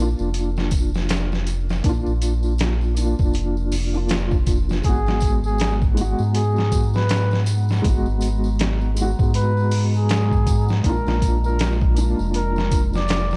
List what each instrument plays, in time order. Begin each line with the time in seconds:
Already playing: analog synth bass A#1, felt piano A#3 F4
0.00 felt piano D4 F4
0.19 analog synth bass F1, tambourine
0.34 closed hi-hat, tambourine
0.57 snare, tambourine
0.71 kick, closed hi-hat, tambourine
0.94 snare, tambourine
1.09 snare, closed hi-hat, tambourine
1.32 snare, tambourine
1.47 closed hi-hat, tambourine
1.69 snare, tambourine
1.82 analog synth bass A#1, felt piano A#3 D4, kick, closed hi-hat, tambourine
1.89 felt piano F4
2.06 analog synth bass A#1, tambourine
2.22 closed hi-hat, tambourine
2.43 tambourine
2.58 snare, closed hi-hat, tambourine
2.81 tambourine
2.95 felt piano A#3 D4, closed hi-hat, tambourine
3.02 felt piano F4
3.19 analog synth bass F1, kick, tambourine
3.33 closed hi-hat, tambourine
3.57 tambourine
3.72 analog synth bass F1, open hi-hat, tambourine
3.94 felt piano A#3 D4 F4, tambourine
4.09 snare, closed hi-hat, tambourine
4.31 kick, tambourine
4.46 kick, closed hi-hat, tambourine
4.69 snare, tambourine
4.82 analog synth bass G#1, felt piano G#3 B3, ambient pad G#3 A#5, muted trumpet G#4, kick, closed hi-hat, tambourine
4.89 felt piano F#4
5.06 snare, tambourine
5.20 kick, closed hi-hat, tambourine
5.44 muted trumpet G#4, tambourine
5.58 snare, closed hi-hat, tambourine
5.82 kick, tambourine
5.95 felt piano G#3 B3, closed hi-hat, tambourine
6.01 felt piano F#4
6.19 analog synth bass G#2, tambourine
6.34 muted trumpet G#4, closed hi-hat, tambourine
6.56 snare, tambourine
6.72 kick, closed hi-hat, tambourine
6.94 muted trumpet B4, snare, tambourine
7.09 snare, closed hi-hat, tambourine
7.31 snare, tambourine
7.46 closed hi-hat, tambourine
7.69 snare, tambourine
7.82 analog synth bass G#1, felt piano G#3 B3, kick, closed hi-hat, tambourine
7.89 felt piano F#4
8.06 analog synth bass G#1, tambourine
8.21 closed hi-hat, tambourine
8.44 tambourine
8.59 snare, closed hi-hat, tambourine
8.81 tambourine
8.95 felt piano G#3 B3, closed hi-hat, tambourine
9.01 felt piano F#4
9.19 analog synth bass G#2, kick, tambourine
9.34 muted trumpet B4, closed hi-hat, tambourine
9.57 tambourine
9.71 open hi-hat, tambourine
9.94 muted trumpet G#4, tambourine
10.09 snare, closed hi-hat, tambourine
10.32 kick, tambourine
10.47 kick, closed hi-hat, tambourine
10.68 snare, tambourine
10.82 analog synth bass A#1, felt piano A#3 D4, muted trumpet A#4, kick, closed hi-hat, tambourine
10.89 felt piano F4
11.06 analog synth bass A#1, snare, tambourine
11.22 kick, closed hi-hat, tambourine
11.44 muted trumpet A#4, tambourine
11.59 snare, closed hi-hat, tambourine
11.81 kick, tambourine
11.94 felt piano A#3 D4, closed hi-hat, tambourine
12.01 felt piano F4
12.19 analog synth bass F1, tambourine
12.34 muted trumpet A#4, closed hi-hat, tambourine
12.56 snare, tambourine
12.71 kick, closed hi-hat, tambourine
12.93 muted trumpet D5, snare, tambourine
13.08 snare, closed hi-hat, tambourine
13.31 snare, tambourine